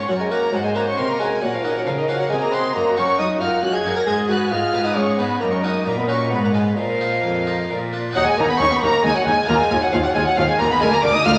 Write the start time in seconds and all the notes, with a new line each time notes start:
Already playing: C#5
0.07 F#2 F#3 A#4 F#5
0.19 G#3 G#5
0.30 A#3 C#4 F#4 A#5
0.52 G#2 F#3 C5 D#5 F#5
0.64 G#3 G#5
0.75 A#3 C#4 F#4 A#5
0.87 C#4 C#6
0.97 C3 C4 A#4 C6
1.09 A#3 A#5
1.20 G#3 A#3 C#4 F#4 G#5
1.42 A#2 F#3 A#4 C#5 F#5
1.53 F3 F5
1.64 D#3 A#3 C#4 F#4 D#5
1.76 F#3 F#5
1.85 C#3 F3 C#5 F5
1.98 D#3 D#5
2.09 F3 A#3 C#4 F#4 F5
2.19 F#3 F#5
2.29 C3 G#3 G#4 D#5 G#5
2.40 A#3 A#5
2.51 A#3 C4 C#4 F#4 C6
2.73 F#2 A#3 F#4 D#5 A#5
2.96 F#2 A#3 C#4 D#4 A#4 F#5 C#6
3.19 F#2 D#4 F#4 D#5 D#6
3.41 F#2 A#3 D#4 F4 A#4 F#5 F6
3.63 F#2 F#4 D#5 F#6
3.73 G#4 G#6
3.85 F#2 A#3 D#4 A#4 F#5
3.96 A#4 A#6
4.06 G#2 G#3 G#4 D#5 G#6
4.29 G#2 B3 D#4 F#4 B4 G#5 F#6
4.50 G#2 F4 G#4 D#5 F6
4.74 G#2 B3 D#4 B4 G#5
4.85 D#4 D#6
4.95 G#2 C#4 G#4 D#5 C#6
5.18 G#2 B3 D#4 B4 G#5 B5
5.40 F#2 A#3 A#4 D#5 A#5
5.51 C#4 C#6
5.63 A#3 D#4 F#4 D#6
5.85 A#2 A#3 A#4 D#5 A#5
5.97 B3 B5
6.07 A#3 C#4 D#4 F#4 C#6
6.30 G#2 B3 B4 F5 B5
6.43 A#3 A#5
6.52 G#3 B3 F4 G#5
6.77 A#2 F3 A#4 D#5 F5
7.01 A#3 D#4 F4
7.23 F2
7.47 A#3 D#4 F4
7.70 A#2 A#4 D5
7.93 A#3 D4 F4
8.11 F#3 A#3 D#4 F#4 F#5
8.15 D#2 D#4
8.26 G#3 G#5
8.37 D#2 A#3 D#4 A#5
8.49 B3 B5
8.59 D#2 C#4 D#4 C#6
8.71 B3 B5
8.81 D#2 A#3 D#4 A#5
9.03 D#2 G#3 D#4 G#5
9.15 F#3 F#5
9.25 D#2 G#3 D#4 G#5
9.44 B3 F4
9.48 D#2 A#3 F4 A#5
9.59 G#3 G#5
9.71 D#2 F4
9.81 F#3 F#5
9.92 D#2 F3 F4 F5
10.03 F#3 F#5
10.14 D#2 G#3 F4 G#5
10.26 F#3 F#5
10.37 D#2 F3 F4 F5
10.47 G#3 G#5
10.58 D#2 A#3 F4 A#5
10.70 B3 B5
10.76 A#3 F4 A#4
10.80 D2 G#3 A#4 G#5
10.91 A#3 A#5
11.02 D2 D4 A#4 D6
11.13 D#4 D#6
11.25 D2 F4 A#4 F6
11.35 D#6